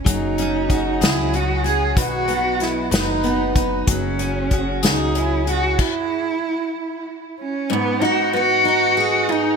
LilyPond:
<<
  \new Staff \with { instrumentName = "Cello" } { \time 6/8 \key fis \mixolydian \tempo 4. = 63 dis'4. e'8 fis'8 gis'8 | fis'4 e'8 dis'4 r8 | cis'4. dis'8 e'8 fis'8 | e'2 r8 cis'8 |
b8 fis'8 fis'4. dis'8 | }
  \new Staff \with { instrumentName = "Steel-string acoustic guitar" } { \time 6/8 \key fis \mixolydian fis8 cis'8 fis'8 gis'8 cis'8 fis'8 | b,8 b4 b'8 b8 dis'8 | fis8 cis'8 fis'8 gis'8 cis'8 fis'8 | r2. |
gis,8 dis'8 b8 dis'8 gis'8 dis'8 | }
  \new Staff \with { instrumentName = "Clean electric guitar" } { \time 6/8 \key fis \mixolydian <fis cis' fis' gis'>8 <cis' fis' gis'>8 <fis cis' fis' gis'>8 <fis cis' fis' gis'>8 <fis cis' fis' gis'>8 <cis' fis' gis'>8 | <b, dis fis b dis' b'>8 <fis b dis' b'>8 <fis b b'>8 <b, dis fis b dis' b'>8 <fis b dis' b'>8 <fis b dis' b'>8 | <fis cis' fis' gis'>8 <cis' fis' gis'>8 <fis cis' fis' gis'>8 <fis cis' fis' gis'>8 <fis cis' fis' gis'>8 <cis' fis' gis'>8 | r2. |
r2. | }
  \new Staff \with { instrumentName = "Upright bass" } { \clef bass \time 6/8 \key fis \mixolydian fis,,4. cis,4. | b,,4. fis,,4. | fis,,4. cis,4. | r2. |
r2. | }
  \new DrumStaff \with { instrumentName = "Drums" } \drummode { \time 6/8 <hh bd>8 hh8 <hh bd>8 <hh sn>8 hh8 hh8 | <hh bd>8 hh8 <hh sn>8 <hh sn>8 hh8 <hh bd>8 | <hh bd>8 hh8 <hh bd>8 <hh sn>8 hh8 hh8 | <cymc bd>4. r4. |
r4. r4. | }
>>